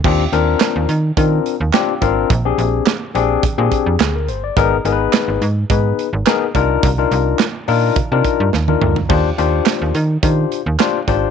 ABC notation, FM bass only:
X:1
M:4/4
L:1/16
Q:1/4=106
K:Eb
V:1 name="FM bass" clef=bass
E,,2 E,,2 z E,, E,2 E,2 z E,, z2 A,,,2 | B,,,2 B,,,2 z2 B,,,2 B,, B,, z F,, D,,2 G,,,2 | A,,,2 A,,,2 z A,,, A,,2 A,,2 z A,,, z2 C,,2 | C,,2 C,,2 z2 B,,2 C, C, z G,, E,,2 D,,2 |
E,,2 E,,2 z E,, E,2 E,2 z E,, z2 A,,,2 |]